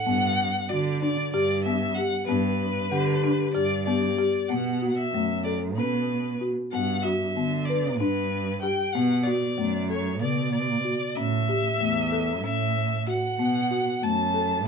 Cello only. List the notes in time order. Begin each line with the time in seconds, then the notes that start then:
0.06 G2
0.70 D3
1.33 G2
2.27 G2
2.91 D3
3.55 G2
4.51 B2
5.13 F#2
5.78 B2
6.74 G2
7.37 D3
8.00 G2
8.95 B2
9.58 F#2
10.21 B2
11.17 A2
11.80 E2
12.44 A2
13.39 B2
14.03 F#2